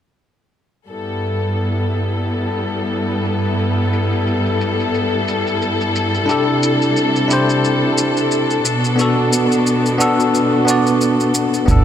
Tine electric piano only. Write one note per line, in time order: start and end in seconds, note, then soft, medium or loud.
6.26 7.25 D4 medium
6.26 7.26 E4 medium
6.26 7.27 G4 medium
6.31 7.28 A4 medium
7.28 8.62 D4 medium
7.28 8.63 E4 medium
7.28 8.64 G4 medium
7.33 8.65 C5 medium
8.96 9.95 B3 medium
8.96 9.96 D4 medium
8.96 9.97 F#4 medium
9.01 9.98 A4 medium
9.98 10.63 B3 medium
9.98 10.63 D4 medium
9.98 10.64 F#4 medium
9.98 10.64 A4 loud
10.65 11.64 B3 medium
10.65 11.65 D4 medium
10.65 11.65 F#4 medium
10.70 11.66 D5 medium
11.66 11.84 B3 medium
11.66 11.84 D4 medium
11.66 11.84 E4 medium
11.71 11.84 A4 medium